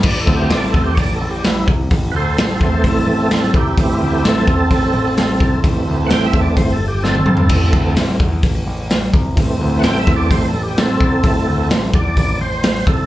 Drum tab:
CC |x---------------|----------------|----------------|----------------|
HH |----o---o---o---|o---o---o---o---|o---o---o---o---|o---o---o-------|
SD |----o-------o---|----o-------o---|----o-------o---|----o-------o---|
T1 |----------------|----------------|----------------|-------------o--|
T2 |----------------|----------------|----------------|--------------o-|
FT |----------------|----------------|----------------|---------------o|
BD |o-o---o-o-----o-|o-----o-o-----o-|o-----o-o-----o-|o-----o-o-------|

CC |x---------------|----------------|----------------|
HH |o---o---o---o---|o---o---o---o---|o---o---o---o---|
SD |----o-------o---|----o-------o---|----o-------o---|
T1 |----------------|----------------|----------------|
T2 |----------------|----------------|----------------|
FT |----------------|----------------|----------------|
BD |o-o---o-o-----o-|o-----o-o-----o-|o-----o-o-----o-|